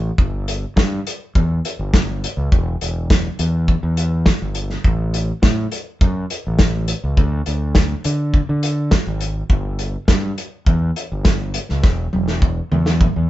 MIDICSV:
0, 0, Header, 1, 3, 480
1, 0, Start_track
1, 0, Tempo, 582524
1, 159, Time_signature, 4, 2, 24, 8
1, 10958, End_track
2, 0, Start_track
2, 0, Title_t, "Fingered electric bass"
2, 0, Program_c, 0, 33
2, 149, Note_on_c, 0, 31, 89
2, 531, Note_off_c, 0, 31, 0
2, 629, Note_on_c, 0, 43, 85
2, 822, Note_off_c, 0, 43, 0
2, 1118, Note_on_c, 0, 40, 82
2, 1308, Note_off_c, 0, 40, 0
2, 1477, Note_on_c, 0, 31, 80
2, 1855, Note_off_c, 0, 31, 0
2, 1953, Note_on_c, 0, 37, 75
2, 2050, Note_off_c, 0, 37, 0
2, 2076, Note_on_c, 0, 28, 97
2, 2266, Note_off_c, 0, 28, 0
2, 2324, Note_on_c, 0, 28, 77
2, 2699, Note_off_c, 0, 28, 0
2, 2796, Note_on_c, 0, 40, 79
2, 3080, Note_off_c, 0, 40, 0
2, 3156, Note_on_c, 0, 40, 80
2, 3534, Note_off_c, 0, 40, 0
2, 3642, Note_on_c, 0, 31, 81
2, 3923, Note_off_c, 0, 31, 0
2, 3992, Note_on_c, 0, 33, 89
2, 4371, Note_off_c, 0, 33, 0
2, 4469, Note_on_c, 0, 45, 87
2, 4661, Note_off_c, 0, 45, 0
2, 4955, Note_on_c, 0, 42, 85
2, 5144, Note_off_c, 0, 42, 0
2, 5329, Note_on_c, 0, 33, 74
2, 5701, Note_off_c, 0, 33, 0
2, 5798, Note_on_c, 0, 37, 76
2, 5892, Note_off_c, 0, 37, 0
2, 5911, Note_on_c, 0, 38, 101
2, 6102, Note_off_c, 0, 38, 0
2, 6158, Note_on_c, 0, 38, 81
2, 6534, Note_off_c, 0, 38, 0
2, 6635, Note_on_c, 0, 50, 78
2, 6918, Note_off_c, 0, 50, 0
2, 6997, Note_on_c, 0, 50, 77
2, 7374, Note_off_c, 0, 50, 0
2, 7474, Note_on_c, 0, 32, 85
2, 7758, Note_off_c, 0, 32, 0
2, 7823, Note_on_c, 0, 31, 89
2, 8205, Note_off_c, 0, 31, 0
2, 8304, Note_on_c, 0, 43, 80
2, 8498, Note_off_c, 0, 43, 0
2, 8790, Note_on_c, 0, 40, 87
2, 8981, Note_off_c, 0, 40, 0
2, 9161, Note_on_c, 0, 31, 76
2, 9537, Note_off_c, 0, 31, 0
2, 9646, Note_on_c, 0, 37, 83
2, 9737, Note_off_c, 0, 37, 0
2, 9754, Note_on_c, 0, 28, 104
2, 9944, Note_off_c, 0, 28, 0
2, 10006, Note_on_c, 0, 28, 81
2, 10380, Note_off_c, 0, 28, 0
2, 10482, Note_on_c, 0, 40, 80
2, 10763, Note_off_c, 0, 40, 0
2, 10846, Note_on_c, 0, 40, 81
2, 10958, Note_off_c, 0, 40, 0
2, 10958, End_track
3, 0, Start_track
3, 0, Title_t, "Drums"
3, 151, Note_on_c, 9, 36, 100
3, 234, Note_off_c, 9, 36, 0
3, 395, Note_on_c, 9, 42, 76
3, 478, Note_off_c, 9, 42, 0
3, 633, Note_on_c, 9, 36, 99
3, 638, Note_on_c, 9, 38, 105
3, 715, Note_off_c, 9, 36, 0
3, 721, Note_off_c, 9, 38, 0
3, 879, Note_on_c, 9, 42, 79
3, 961, Note_off_c, 9, 42, 0
3, 1115, Note_on_c, 9, 36, 97
3, 1198, Note_off_c, 9, 36, 0
3, 1359, Note_on_c, 9, 42, 77
3, 1441, Note_off_c, 9, 42, 0
3, 1595, Note_on_c, 9, 36, 101
3, 1595, Note_on_c, 9, 38, 98
3, 1677, Note_off_c, 9, 38, 0
3, 1678, Note_off_c, 9, 36, 0
3, 1845, Note_on_c, 9, 42, 80
3, 1927, Note_off_c, 9, 42, 0
3, 2077, Note_on_c, 9, 36, 106
3, 2160, Note_off_c, 9, 36, 0
3, 2318, Note_on_c, 9, 42, 74
3, 2400, Note_off_c, 9, 42, 0
3, 2556, Note_on_c, 9, 36, 110
3, 2559, Note_on_c, 9, 38, 107
3, 2638, Note_off_c, 9, 36, 0
3, 2641, Note_off_c, 9, 38, 0
3, 2793, Note_on_c, 9, 42, 78
3, 2876, Note_off_c, 9, 42, 0
3, 3033, Note_on_c, 9, 36, 88
3, 3116, Note_off_c, 9, 36, 0
3, 3273, Note_on_c, 9, 42, 74
3, 3355, Note_off_c, 9, 42, 0
3, 3508, Note_on_c, 9, 38, 106
3, 3512, Note_on_c, 9, 36, 102
3, 3590, Note_off_c, 9, 38, 0
3, 3594, Note_off_c, 9, 36, 0
3, 3746, Note_on_c, 9, 42, 73
3, 3829, Note_off_c, 9, 42, 0
3, 3871, Note_on_c, 9, 38, 32
3, 3954, Note_off_c, 9, 38, 0
3, 3992, Note_on_c, 9, 36, 99
3, 4074, Note_off_c, 9, 36, 0
3, 4234, Note_on_c, 9, 42, 73
3, 4316, Note_off_c, 9, 42, 0
3, 4472, Note_on_c, 9, 38, 97
3, 4473, Note_on_c, 9, 36, 105
3, 4555, Note_off_c, 9, 36, 0
3, 4555, Note_off_c, 9, 38, 0
3, 4710, Note_on_c, 9, 42, 77
3, 4792, Note_off_c, 9, 42, 0
3, 4953, Note_on_c, 9, 36, 103
3, 5035, Note_off_c, 9, 36, 0
3, 5193, Note_on_c, 9, 42, 73
3, 5275, Note_off_c, 9, 42, 0
3, 5427, Note_on_c, 9, 38, 107
3, 5432, Note_on_c, 9, 36, 112
3, 5509, Note_off_c, 9, 38, 0
3, 5514, Note_off_c, 9, 36, 0
3, 5667, Note_on_c, 9, 42, 76
3, 5750, Note_off_c, 9, 42, 0
3, 5910, Note_on_c, 9, 36, 95
3, 5993, Note_off_c, 9, 36, 0
3, 6147, Note_on_c, 9, 42, 70
3, 6229, Note_off_c, 9, 42, 0
3, 6384, Note_on_c, 9, 38, 103
3, 6390, Note_on_c, 9, 36, 105
3, 6467, Note_off_c, 9, 38, 0
3, 6472, Note_off_c, 9, 36, 0
3, 6628, Note_on_c, 9, 42, 80
3, 6710, Note_off_c, 9, 42, 0
3, 6869, Note_on_c, 9, 36, 95
3, 6952, Note_off_c, 9, 36, 0
3, 7110, Note_on_c, 9, 42, 77
3, 7192, Note_off_c, 9, 42, 0
3, 7344, Note_on_c, 9, 38, 101
3, 7348, Note_on_c, 9, 36, 100
3, 7427, Note_off_c, 9, 38, 0
3, 7430, Note_off_c, 9, 36, 0
3, 7585, Note_on_c, 9, 42, 72
3, 7667, Note_off_c, 9, 42, 0
3, 7826, Note_on_c, 9, 36, 97
3, 7908, Note_off_c, 9, 36, 0
3, 8065, Note_on_c, 9, 42, 67
3, 8148, Note_off_c, 9, 42, 0
3, 8305, Note_on_c, 9, 38, 103
3, 8307, Note_on_c, 9, 36, 100
3, 8388, Note_off_c, 9, 38, 0
3, 8389, Note_off_c, 9, 36, 0
3, 8552, Note_on_c, 9, 42, 73
3, 8634, Note_off_c, 9, 42, 0
3, 8788, Note_on_c, 9, 36, 94
3, 8870, Note_off_c, 9, 36, 0
3, 9033, Note_on_c, 9, 42, 76
3, 9115, Note_off_c, 9, 42, 0
3, 9267, Note_on_c, 9, 38, 100
3, 9270, Note_on_c, 9, 36, 105
3, 9350, Note_off_c, 9, 38, 0
3, 9353, Note_off_c, 9, 36, 0
3, 9508, Note_on_c, 9, 42, 82
3, 9591, Note_off_c, 9, 42, 0
3, 9634, Note_on_c, 9, 38, 31
3, 9717, Note_off_c, 9, 38, 0
3, 9749, Note_on_c, 9, 38, 56
3, 9753, Note_on_c, 9, 36, 105
3, 9832, Note_off_c, 9, 38, 0
3, 9835, Note_off_c, 9, 36, 0
3, 9994, Note_on_c, 9, 48, 57
3, 10077, Note_off_c, 9, 48, 0
3, 10116, Note_on_c, 9, 38, 58
3, 10198, Note_off_c, 9, 38, 0
3, 10233, Note_on_c, 9, 36, 102
3, 10315, Note_off_c, 9, 36, 0
3, 10478, Note_on_c, 9, 47, 66
3, 10560, Note_off_c, 9, 47, 0
3, 10597, Note_on_c, 9, 38, 69
3, 10680, Note_off_c, 9, 38, 0
3, 10718, Note_on_c, 9, 36, 94
3, 10723, Note_on_c, 9, 45, 74
3, 10800, Note_off_c, 9, 36, 0
3, 10805, Note_off_c, 9, 45, 0
3, 10958, End_track
0, 0, End_of_file